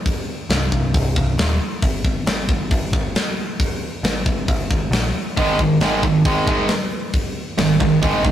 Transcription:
0.06 kick, open hi-hat
0.50 C1, snare, open hi-hat
0.72 C1, kick
0.94 C1, kick, open hi-hat
1.16 C1, kick
1.38 D#1, snare, open hi-hat
1.61 muted picked electric bass stroke
1.82 G#1, kick, open hi-hat
2.04 G#1, kick
2.26 G#1, snare, open hi-hat
2.49 G#1, kick
2.71 G#1, kick, open hi-hat
2.93 G#1, kick
3.15 snare, open hi-hat
3.60 kick, open hi-hat
4.03 G#1, snare, open hi-hat
4.26 G#1, kick
4.48 G#1, kick, open hi-hat
4.70 G#1, kick
4.91 A#1, snare, open hi-hat
5.15 muted picked electric bass stroke
5.37 G#1 G#2 D#3 G#3, kick, open hi-hat
5.59 G#1 G#2 D#3, kick
5.80 G#1 G#2 D#3 G#3, snare, open hi-hat
6.03 G#1 G#2 D#3, kick
6.25 G#1 G#2 D#3 G#3, kick, open hi-hat
6.46 G#1 G#2 D#3 G#3, kick
6.68 snare, open hi-hat
7.13 kick, open hi-hat
7.58 G#1 G#2 D#3, snare, open hi-hat
7.80 G#1 G#2 D#3, kick
8.03 G#1 G#2 D#3 G#3, kick, open hi-hat
8.25 G#1 G#2 D#3, kick

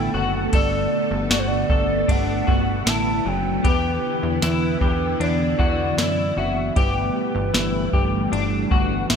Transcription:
Already playing: D3 A3 B3 E4 A4 G5
0.14 F#1 F#4 F#5
0.53 G1 A4 D5, kick, ride
1.11 G1
1.30 G1 F#4 D5, snare, ride, tambourine
1.39 C5
1.47 D5
1.69 G1 A4, kick
2.08 G1 D4 F#5, kick, ride
2.47 G1 F#4, kick
2.86 A1 E4 A5, snare, ride, tambourine
3.25 F#1 F#3 G5
3.64 E2 D3 E3 E4 G4 B4, kick, ride
4.23 E2
4.42 E2 E4 B4, snare, ride, tambourine
4.81 E2 G4, kick
5.20 E2 D4 D5, ride
5.59 E2 F#4, kick
5.98 F#2 E4, snare, ride, tambourine
6.37 F#1 F#4 E5
6.76 G1 E3 G3 A3 G4 B4, kick, ride
7.35 G1
7.54 G1 E4, snare, ride, tambourine
7.93 G1 G4, kick
8.32 G1 D4, ride
8.71 G1 F#4, kick
9.10 A1 E4, snare, ride, tambourine

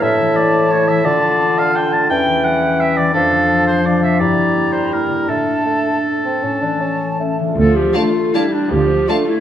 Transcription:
Already playing: E4
0.01 A2 E5 A5
0.19 E3
0.36 A3 D5
0.54 E4
0.71 A3 C#5
0.88 E3 E5
1.05 D3 F4 D5
1.22 A3
1.40 D4
1.58 A4 F5
1.75 D4 G5
1.93 A3 A5
2.10 E2 E3 C#4 G5
2.27 E3
2.45 G3 F#5
2.63 E4
2.80 G3 E5
2.97 E3 D5
3.13 F2 F3 D4 A4 F5
3.31 D3
3.49 F3
3.67 A4 C5
3.85 F3 D4 D5 F5
4.03 D3 E5
4.19 G2 G3 E4 D5 A#5
4.36 D3
4.54 A#3
4.72 A#4 C5
4.92 A#3 E4 A#4 A#5
5.10 D3
5.28 A2 A3 D4 A4 A5
5.47 A3
5.66 A3 D4
5.86 A4
6.06 D4
6.25 A3 C4
6.42 A2 C#4 A5
6.61 E3 D4
6.81 C#4
7.00 A4
7.20 A3 C#4
7.39 D3 E3
7.43 D4
7.48 F4
7.52 A4
7.56 D2 F3 A4
7.76 G4
7.94 A3 D4 F4 D5 F5 A5
8.34 G3 A3 D4 E4 D5 F5 A5
8.53 D4
8.71 D2 F3 G4
9.08 A3 D4 F4 D5 F5 A5
9.29 E4

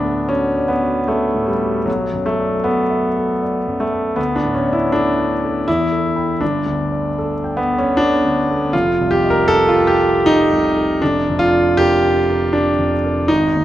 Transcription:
Already playing: D2 A2 B3 D4
0.04 A4
0.29 C#4 F#4
0.57 D5
0.68 B3
0.83 F#4
1.08 A3 A4
1.34 A2
1.46 G3
1.61 F#4
1.86 B1 F#3
2.13 F#2
2.26 A3
2.40 D5
2.64 B3 A4
2.90 E5
3.17 A4
3.43 D5
3.67 F#2
3.80 A3
3.93 A4
4.16 D2 B3
4.36 D4
4.43 A2
4.55 C#4
4.68 D5
4.73 E4
4.92 D4 A4
5.19 F#5
5.45 A4
5.68 E2 E4
5.92 A4
6.16 G5 B5
6.41 G1 D4
6.66 D2
6.92 D5
7.18 A4
7.44 G5
7.57 B3
7.73 A4
7.78 C#4
7.97 D4 D5
8.25 D2
8.51 A4
8.73 F1 F4
9.01 C2
9.11 G4
9.24 D#5
9.30 A#4
9.48 A4
9.68 F4
9.76 G5
9.87 G4
10.02 A4
10.26 D#4 D#5
10.53 C2
10.77 A4
11.02 F1 D4
11.29 F2
11.39 F4
11.53 D5
11.77 G4 A#4
12.02 G5
12.29 A#4
12.53 D4 D5
12.78 F2
13.04 A#4
13.28 G#1 D#4
13.56 D#2

